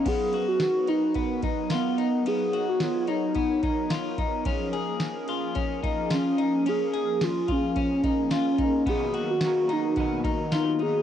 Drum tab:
CC |x-------|--------|--------|--------|
RD |xxxxxxxx|xxxxxxxx|xxxxxxxx|xxxxxxxx|
TB |--x---x-|--x---x-|--x---x-|--x---x-|
SD |--o---o-|--o---o-|--o---o-|--o---o-|
BD |o---oo--|----oo-o|o---oo--|---ooo-o|

CC |--------|
RD |xxxxxxxx|
TB |--x---x-|
SD |--o---o-|
BD |o---oo--|